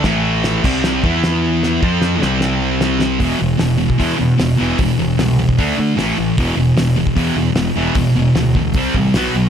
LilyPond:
<<
  \new Staff \with { instrumentName = "Distorted electric guitar" } { \clef bass \time 4/4 \key e \minor \tempo 4 = 151 <a, e a>4. <c g c'>4 <e b e'>4.~ | <e b e'>8 <f c' f'>4 <c g c'>2~ <c g c'>8 | <e, b, e>8 <e, b,>8 <e, b,>8 <e, b,>8 <e, b, e>8 <e, b,>8 <e, b,>8 <e, b, e>8 | <e, b,>8 <e, b,>8 <e, b,>8 <e, b,>8 <d a d'>8 <d a>8 <a, e a>8 <a, e>8 |
<e, b, e>8 <e, b,>8 <e, b,>8 <e, b,>8 <e, b, e>8 <e, b,>8 <e, b,>8 <e, b, e>8 | <e, b,>8 <e, b,>8 <e, b,>8 <e, b,>8 <c g c'>8 <c g>8 <b, fis b>8 <b, fis>8 | }
  \new Staff \with { instrumentName = "Picked electric bass" } { \clef bass \time 4/4 \key e \minor a,,4. c,4 e,4.~ | e,8 f,4 c,2~ c,8 | e,,8 e,,8 e,,4 e,8 e,8 e,,8 e,,8 | e,,8 e,,8 c,4 d,8 d8 a,,8 a,,8 |
e,,8 e,,8 e,,4 e,8 e,8 e,,8 e,,8 | e,,8 e,,8 d,4 c,8 a,,8 b,,8 b,,8 | }
  \new DrumStaff \with { instrumentName = "Drums" } \drummode { \time 4/4 <cymc bd sn>4 <cymc sn>8 <cymc bd>8 <cymc sn>8 bd8 <cymc sn>4 | sn8 bd8 sn8 sn8 sn4 sn8 sn8 | <hho bd>4 <hho sn>8. bd16 <hho bd>4 <hho sn>4 | <hho bd>4 <hho sn>8. bd16 <hho bd>4 <hho sn>4 |
<hho bd>4 <hho sn>8. bd16 <hho bd>4 <hho sn>4 | <hho bd>4 <hho sn>8 bd8 <hho bd>8 bd8 <hho sn>4 | }
>>